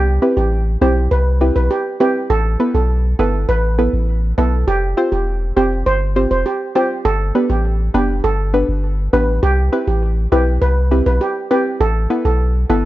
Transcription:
Already playing: C2
0.22 C4 E4 G4 B4
0.37 A1 G4
0.81 B1 C4 E4 G4 C5
1.11 C2 B4
1.41 C4 E4 G4 B4
1.56 B1 B4
1.71 G4
2.00 C4 E4 G4 B4
2.30 A1 A4
2.60 B3 E4 A4 B4
2.74 B1 A4
3.19 G1 B3 E4 A4 B4
3.49 A1 B4
3.78 B3 E4 A4 B4
3.93 A1
4.38 B1 B3 E4 A4 B4
4.67 F1 G4
4.97 C4 F4 G4 C5
5.12 E1 G4
5.56 F1 C4 F4 G4 C5
5.86 G1 C5
6.16 C4 F4 G4 C5
6.31 F1 C5
6.46 G4
6.75 C4 F4 G4 C5
7.05 G1 A4
7.35 B3 D4 G4 B4
7.50 A1 G4
7.94 F1 B3 D4 G4 B4
8.24 G1 A4
8.54 B3 D4 G4 B4
8.69 G1
9.13 A1 B3 D4 G4 B4
9.43 C2 G4
9.72 C4 E4 G4 B4
9.87 A1 G4
10.32 B1 C4 E4 G4 B4
10.62 C2 B4
10.91 C4 E4 G4 B4
11.06 B1 B4
11.21 G4
11.51 C4 E4 G4 B4
11.80 A1 A4
12.10 B3 E4 A4 B4
12.25 B1 A4
12.70 G1 B3 E4 A4 B4

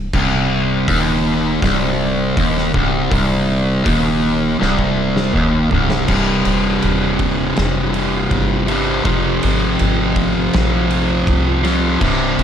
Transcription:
Already playing: C1
0.14 C1 C2, kick, crash
0.88 D#1 D#2, kick, open hi-hat
1.62 C1 C2, kick, snare, open hi-hat
2.37 D#1 D#2, kick, open hi-hat
2.58 snare
2.74 C1 C2, kick
3.11 C1 C2, kick, open hi-hat
3.85 D#1 D#2, kick, open hi-hat
4.59 C1 C2, snare
4.79 kick
5.17 snare
5.33 D#1 D#2, mid tom
5.71 C1 C2, floor tom
5.91 snare
6.07 C1 C2 G2 C3, kick, crash
6.45 D#1, ride
6.82 D#1, ride
7.19 kick, ride
7.56 F1, snare, ride
7.94 ride
8.31 G1, kick, ride
8.67 C2 G2 C3, ride
9.05 F1 F2 C3 F3, kick, ride
9.43 G#1, ride
9.79 G#1, ride
10.16 kick, ride
10.53 A#1, snare, ride
10.91 ride
11.27 C2, kick, ride
11.64 F2 C3 F3, snare, ride
12.00 C1 C2 G2 C3, kick, crash
12.38 D#1, ride

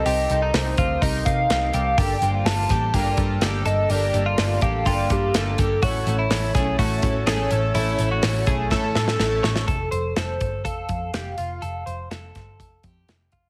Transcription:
Already playing: C4 D#4 G4 A4 A#4 D#5
0.06 C2 C4 D#4 G4 A#4, hi-hat pedal, open hi-hat
0.30 C2 C4 D#4 G4 A4, hi-hat pedal, open hi-hat
0.42 D#4
0.54 C2 C4 D#4 G4 A#4 C5, snare, hi-hat pedal, open hi-hat
0.77 D2 C4 D#4 F4 G4 C5, kick, hi-hat pedal, open hi-hat
1.01 C2 C4 D#4 G4 A#4 D#5, kick, hi-hat pedal, open hi-hat
1.25 C3 C4 D#4 G4 A#4 F5, kick, hi-hat pedal, open hi-hat
1.50 C2 C4 D#4 G4 A#4, snare, hi-hat pedal, open hi-hat
1.73 C2 C4 D#4 G4 A4, hi-hat pedal, open hi-hat
1.97 G1 G2 D3 G3 A#3 D4 G4 A4 G5, kick, hi-hat pedal, open hi-hat
2.22 G1 G3 A#3 D4 G4 A4 C5, hi-hat pedal, open hi-hat
2.35 F4
2.45 G1 G3 A#3 D4 G4 A4 A5, snare, hi-hat pedal, open hi-hat
2.69 A1 G3 A#3 D4 G4 A4, kick, snare, hi-hat pedal, open hi-hat
2.93 G1 G2 D3 G3 A#3 D4 F4 G4 A4 A#4 G5, kick, hi-hat pedal, open hi-hat
3.17 G2 G3 A#3 D4 G4 A4, kick, hi-hat pedal, open hi-hat
3.41 G1 G3 A#3 D4 G4 A4, snare, hi-hat pedal, open hi-hat
3.65 G1 G3 A#3 D4 G4 A4 D#5, hi-hat pedal, open hi-hat
3.89 G1 G2 D3 G3 A#3 D4 G4 A4 A#4 D5, hi-hat pedal, open hi-hat
4.13 G1 G3 A#3 D4 G4 A4, hi-hat pedal, open hi-hat
4.26 F4
4.37 G1 G3 A#3 D4 G4 A4, snare, hi-hat pedal, open hi-hat
4.61 A1 G3 A#3 D4 G4 A4 F5, kick, hi-hat pedal, open hi-hat
4.85 G1 G2 D3 G3 A#3 D4 F4 G4 A4 G5, kick, hi-hat pedal, open hi-hat
5.09 G2 G3 A#3 D4 G4 A4, kick, hi-hat pedal, open hi-hat
5.33 G1 G3 A#3 D4 G4 A4, snare, hi-hat pedal, open hi-hat
5.58 G1 G3 A#3 D4 G4 A4, kick, hi-hat pedal, open hi-hat
5.82 A1 A2 E3 A3 C#4 E4 F#4 A4 C#5, kick, hi-hat pedal, open hi-hat
6.06 A1 A3 C#4 E4 A4, hi-hat pedal, open hi-hat
6.19 E4
6.30 A1 A3 C#4 E4 A4 C#5, snare, hi-hat pedal, open hi-hat
6.54 B1 A3 C#4 E4 G#4 A4 C#5, kick, snare, hi-hat pedal, open hi-hat
6.78 A1 A2 E3 A3 C#4 E4 F#4 A4, kick, hi-hat pedal, open hi-hat
7.02 A2 A3 C#4 E4 A4, kick, hi-hat pedal, open hi-hat
7.26 A1 A3 C#4 E4 G#4 A4, snare, hi-hat pedal, open hi-hat
7.50 A1 A3 C#4 E4 A4, hi-hat pedal, open hi-hat
7.54 A3
7.74 A1 A2 E3 A3 C#4 E4 A4, hi-hat pedal, open hi-hat
7.99 A1 A3 C#4 E4 A4, hi-hat pedal, open hi-hat
8.11 F#4
8.22 A1 A3 C#4 E4 A4, snare, hi-hat pedal, open hi-hat
8.46 B1 A3 C#4 E4 G#4 A4, kick, hi-hat pedal, open hi-hat
8.70 A1 A2 E3 A3 C#4 E4 A4, kick, snare
8.94 A2 A3 C#4 E4 A4, snare
9.08 snare
9.19 A1 A3 C#4 E4 A4, snare
9.43 A1 A3 C#4 E4 A4 C#5, snare
9.56 snare
9.68 F1 A4, kick, closed hi-hat
9.91 F1 C5, closed hi-hat
10.16 F1 A4 C5, snare, closed hi-hat
10.41 G1, kick, closed hi-hat
10.65 F1 A4 F5, kick, closed hi-hat
10.89 F2, kick, closed hi-hat
11.14 F1 G4, snare, closed hi-hat
11.38 F1 F4, closed hi-hat
11.62 F1 A4, closed hi-hat
11.86 F1 C5, closed hi-hat
12.11 F1 A4, snare, closed hi-hat
12.35 G1, kick, snare, closed hi-hat
12.60 F1, kick, closed hi-hat
12.83 F2 G4, kick, closed hi-hat
13.08 F1, snare, closed hi-hat
13.32 F1 F4, kick, closed hi-hat

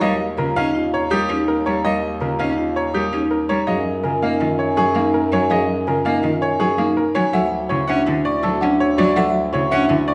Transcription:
0.01 D#2 G3 A#4 D#5 F5
0.37 C#3 F4 A#4 A#5
0.56 C#4 D#4 D#5 F5
0.75 F4
0.93 C#5 A#5
1.11 G3 G4 A#4 D#6
1.29 C#4 D#4
1.48 A#4
1.66 G3 G4 C#5 A#5
1.84 G3 A#4 D#5 F5
2.20 C#3 F4 A#4 A#5
2.39 C#4 D#4 D#5 F5
2.58 F4
2.76 C#5 A#5
2.94 G3 G4 A#4 D#6
3.13 C#4 D#4
3.31 A#4
3.49 G3 G4 C#5 A#5
3.67 F#2 F#3 G#4 D#5 F5
4.04 C#3 F4 A#4 G#5
4.22 A#3 D#4 D#5 F5
4.40 D#3 F4
4.59 C#5 G#5
4.77 F#3 G#4 C#6
4.95 A#3 D#4 F5
5.14 A#4
5.32 F#3 F#4 C#5 G#5
5.50 F#3 G#4 D#5 F5
5.87 C#3 F4 A#4 G#5
6.05 A#3 D#4 D#5 F5
6.23 D#3 F4
6.41 C#5 G#5
6.60 F#3 G#4 C#6
6.78 A#3 D#4 F5
6.97 A#4
7.15 F#3 F#4 C#5 G#5
7.33 D2 F#3 A4 E5 F#5
7.69 C#3 E4 C#5 C#6
7.87 C#4 D4 E5 F#5
8.06 D3 E4
8.25 D5 C#6
8.43 F#3 A4 E6
8.61 C#4 D4 F#5
8.80 C#5
8.98 F#3 F#4 D5 C#6
9.16 F#3 A4 E5 F#5
9.53 C#3 E4 C#5 C#6
9.71 C#4 D4 E5 F#5
9.89 D3 E4
10.08 D5 C#6

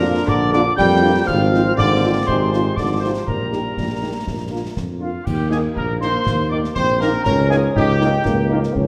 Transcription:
Already playing: F2 A#2 D4 A#4 A#5
0.03 A#3 D4 F4
0.27 A#1 D3 D5 D6, concert bass drum
0.52 D3 A#3 D4 F4 D5 D6, snare
0.76 F2 G3 A#3 G5 G6, concert bass drum, snare
1.03 A#3 D4 F4
1.25 G#1 F3 C4 F5 F6, concert bass drum, crash
1.53 C4 D#4 F4, snare
1.77 G#1 D3 D5 D6, concert bass drum, snare
2.02 C4 D#4 F4
2.26 G#1 C3 G#3 C5 C6, concert bass drum
2.51 C4 D#4 F4, snare
2.77 G#1 D3 F3 D5 D6, concert bass drum, snare
3.00 C3 C4 D#4 F4 C5 C6
3.26 A#1 A#2 G3 A#4 A#5, concert bass drum
3.52 A#3 D#4 G4, snare
3.77 A#1, concert bass drum, snare
4.02 A#3 D#4 G4
4.27 A#1, concert bass drum, snare
4.51 A#3 D4 F4
4.77 F2, concert bass drum, snare
5.00 A#3 D4 F4 F5
5.24 D#2 A#3 G4 G5, concert bass drum, crash
5.49 D#3 A#3 D#4 G#4 G#5, snare
5.75 A#1 A#4 A#5, concert bass drum
6.00 D#3 A#3 D#4 C5 C6, snare
6.27 D#2, concert bass drum, snare
6.49 D#3 A#3 D#4 D5 D6
6.64 snare
6.75 A#1 C4 C5 C6, concert bass drum
7.00 D#3 A#3 D#4 A#4 A#5, snare
7.24 C#2 C#4 A#4 A#5, concert bass drum, crash
7.50 D#3 A#3 D#4 G#4 G#5, snare
7.75 C#2 D#4 G4 G5, concert bass drum
8.00 D#3 A#3 D#4, snare
8.25 C#2 A#3, concert bass drum, snare
8.50 D#3 A#3 D#4
8.63 snare
8.74 C#2 C#4, concert bass drum

